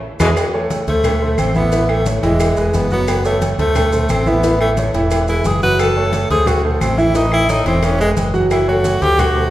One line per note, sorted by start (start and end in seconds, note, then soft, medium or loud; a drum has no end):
0.20 0.33 E2 loud
0.20 0.28 B2 loud
0.20 0.29 B2 medium
0.20 0.29 E3 loud
0.20 0.29 G#3 loud
0.20 0.31 E4 medium
0.20 0.31 G#4 medium
0.20 0.31 B4 loud
0.20 cowbell loud
0.20 high conga loud
0.20 high timbale loud
0.20 claves loud
0.20 maracas loud
0.37 cowbell loud
0.37 high conga soft
0.37 low agogo loud
0.37 claves medium
0.37 maracas medium
0.54 0.82 A3 medium
0.54 0.82 A4 medium
0.54 0.82 C#5 medium
0.54 high conga soft
0.54 low agogo medium
0.70 cowbell medium
0.70 high conga loud
0.70 low agogo medium
0.70 maracas medium
0.87 1.35 D2 medium
0.87 1.16 A3 medium
0.87 1.41 A3 medium
0.87 1.16 A4 medium
0.87 1.16 C5 medium
0.87 cowbell medium
0.87 high conga soft
0.87 maracas soft
1.04 cowbell loud
1.04 high conga soft
1.04 low conga medium
1.04 low agogo loud
1.04 claves medium
1.04 maracas medium
1.21 1.49 A3 medium
1.21 1.50 A4 medium
1.21 1.50 C5 medium
1.21 high conga soft
1.38 2.18 A1 medium
1.38 1.56 C4 medium
1.38 cowbell medium
1.38 high conga medium
1.38 low agogo loud
1.38 claves medium
1.38 maracas medium
1.55 1.69 E3 medium
1.55 1.92 B3 loud
1.55 1.69 E4 medium
1.55 1.70 E5 medium
1.55 high conga medium
1.55 low agogo medium
1.55 maracas soft
1.72 2.00 E3 medium
1.72 2.00 E4 medium
1.72 2.01 E5 medium
1.72 cowbell loud
1.72 maracas medium
1.89 2.07 A3 medium
1.89 high conga soft
1.89 low agogo loud
1.89 claves medium
2.06 2.20 A3 medium
2.06 2.20 A4 medium
2.06 2.21 C#5 medium
2.06 cowbell medium
2.06 high conga loud
2.06 maracas medium
2.23 2.55 E1 medium
2.23 2.51 E3 loud
2.23 2.78 G#3 medium
2.23 2.51 E4 medium
2.23 2.51 E5 medium
2.23 cowbell medium
2.23 high conga soft
2.23 low agogo medium
2.23 maracas soft
2.40 cowbell loud
2.40 high conga soft
2.40 low agogo loud
2.40 claves medium
2.40 maracas medium
2.57 2.73 E1 medium
2.57 2.85 G#3 medium
2.57 2.85 G#4 medium
2.57 2.85 B4 medium
2.57 high conga soft
2.57 maracas medium
2.74 3.53 F#1 medium
2.74 2.92 B3 medium
2.74 cowbell medium
2.74 high conga medium
2.74 low agogo medium
2.74 maracas medium
2.91 3.19 F#3 medium
2.91 3.23 B3 loud
2.91 3.19 F#4 medium
2.91 3.19 F#5 medium
2.91 high conga medium
2.91 maracas soft
3.08 cowbell loud
3.08 high conga soft
3.08 low agogo loud
3.08 claves medium
3.08 maracas medium
3.25 3.53 A3 medium
3.25 3.41 A3 medium
3.25 3.53 A4 medium
3.25 3.53 C#5 medium
3.25 high conga soft
3.25 low agogo medium
3.25 maracas medium
3.41 cowbell medium
3.41 high conga loud
3.41 low agogo medium
3.41 maracas medium
3.58 4.06 D2 medium
3.58 3.87 A3 medium
3.58 4.13 A3 loud
3.58 3.87 A4 medium
3.58 3.87 C5 medium
3.58 cowbell medium
3.58 high conga soft
3.58 maracas soft
3.75 cowbell loud
3.75 high conga soft
3.75 low conga medium
3.75 low agogo loud
3.75 claves medium
3.75 maracas medium
3.92 4.20 A3 medium
3.92 4.21 A4 medium
3.92 4.21 C5 medium
3.92 high conga soft
3.92 low conga medium
3.92 maracas medium
4.09 4.89 A1 medium
4.09 4.29 C4 medium
4.09 cowbell medium
4.09 high conga medium
4.09 low agogo loud
4.09 claves medium
4.09 maracas medium
4.26 4.40 E3 medium
4.26 4.61 B3 loud
4.26 4.40 E4 medium
4.26 4.41 E5 medium
4.26 high conga medium
4.26 low agogo medium
4.26 maracas soft
4.43 4.71 E3 medium
4.43 4.72 E4 medium
4.43 4.72 E5 medium
4.43 cowbell loud
4.43 high conga soft
4.43 maracas medium
4.60 4.71 A3 loud
4.60 high conga soft
4.60 low agogo loud
4.60 claves medium
4.77 4.92 A3 medium
4.77 4.92 A4 medium
4.77 4.92 C#5 medium
4.77 cowbell medium
4.77 high conga medium
4.77 maracas medium
4.94 5.42 E1 medium
4.94 5.22 E3 medium
4.94 5.23 E4 medium
4.94 5.23 E5 medium
4.94 cowbell medium
4.94 high conga soft
4.94 low agogo medium
4.94 maracas soft
5.11 cowbell loud
5.11 high conga soft
5.11 low agogo loud
5.11 claves medium
5.11 maracas medium
5.28 5.56 G#3 medium
5.28 5.48 E4 loud
5.28 5.57 G#4 medium
5.28 5.57 B4 medium
5.28 high conga soft
5.28 maracas medium
5.45 6.24 F#1 medium
5.45 5.63 G#4 medium
5.45 cowbell medium
5.45 high conga medium
5.45 low agogo medium
5.45 maracas medium
5.62 5.90 F#3 medium
5.62 5.91 F#4 medium
5.62 5.82 B4 loud
5.62 5.91 F#5 medium
5.62 high conga medium
5.62 maracas soft
5.79 6.30 A4 loud
5.79 cowbell loud
5.79 high conga soft
5.79 low agogo loud
5.79 claves medium
5.79 maracas medium
5.96 6.24 A3 medium
5.96 6.25 A4 medium
5.96 6.25 C#5 medium
5.96 high conga soft
5.96 low agogo medium
6.13 cowbell medium
6.13 high conga loud
6.13 low agogo medium
6.13 maracas medium
6.29 6.78 D2 loud
6.29 6.58 A3 medium
6.29 6.49 G#4 loud
6.29 6.58 A4 medium
6.29 6.58 C5 medium
6.29 cowbell medium
6.29 high conga soft
6.29 maracas soft
6.46 6.64 F#4 medium
6.46 cowbell loud
6.46 high conga soft
6.46 low conga medium
6.46 low agogo loud
6.46 claves medium
6.46 maracas medium
6.64 6.92 A3 medium
6.64 6.81 A3 medium
6.64 6.92 A4 medium
6.64 6.92 C5 medium
6.64 high conga soft
6.81 7.60 A1 medium
6.81 7.00 C4 medium
6.81 cowbell medium
6.81 high conga medium
6.81 low agogo loud
6.81 claves medium
6.81 maracas medium
6.98 7.12 E3 medium
6.98 7.12 E4 medium
6.98 7.18 E4 loud
6.98 7.12 E5 medium
6.98 high conga medium
6.98 low agogo medium
6.98 maracas soft
7.14 7.43 E3 medium
7.14 7.33 D#4 loud
7.14 7.43 E4 medium
7.14 7.43 E5 medium
7.14 cowbell loud
7.14 maracas medium
7.32 7.52 E4 loud
7.32 high conga soft
7.32 low agogo loud
7.32 claves medium
7.49 7.63 A3 medium
7.49 7.67 D#4 loud
7.49 7.63 A4 medium
7.49 7.63 C#5 medium
7.49 cowbell medium
7.49 high conga loud
7.49 maracas medium
7.66 8.13 E1 loud
7.66 7.94 E3 loud
7.66 7.86 C4 loud
7.66 7.94 E4 medium
7.66 7.94 E5 loud
7.66 cowbell medium
7.66 high conga soft
7.66 low agogo medium
7.66 maracas soft
7.83 8.00 C#4 loud
7.83 cowbell loud
7.83 high conga soft
7.83 low agogo loud
7.83 claves medium
7.83 maracas medium
7.99 8.28 G#3 medium
7.99 8.11 G#3 loud
7.99 8.28 G#4 medium
7.99 8.28 B4 medium
7.99 high conga soft
7.99 maracas medium
8.17 8.96 F#1 medium
8.17 cowbell medium
8.17 high conga medium
8.17 low agogo medium
8.17 maracas medium
8.34 8.62 F#3 medium
8.34 8.62 F#4 medium
8.34 8.62 F#5 medium
8.34 high conga medium
8.34 maracas soft
8.51 8.68 E4 medium
8.51 cowbell loud
8.51 high conga soft
8.51 low agogo loud
8.51 claves medium
8.51 maracas medium
8.68 8.96 A3 medium
8.68 9.04 F#4 loud
8.68 8.96 A4 medium
8.68 8.96 C#5 medium
8.68 high conga soft
8.68 low agogo medium
8.84 cowbell medium
8.84 high conga loud
8.84 low agogo medium
8.84 maracas medium
9.02 9.49 D2 loud
9.02 9.30 A3 medium
9.02 9.22 G4 loud
9.02 9.30 A4 medium
9.02 9.30 C5 medium
9.02 cowbell medium
9.02 high conga soft
9.02 maracas soft
9.19 9.50 F#4 loud
9.19 cowbell loud
9.19 high conga soft
9.19 low conga medium
9.19 low agogo loud
9.19 claves medium
9.19 maracas medium
9.36 9.50 A3 medium
9.36 9.50 A4 medium
9.36 9.50 C5 medium
9.36 high conga soft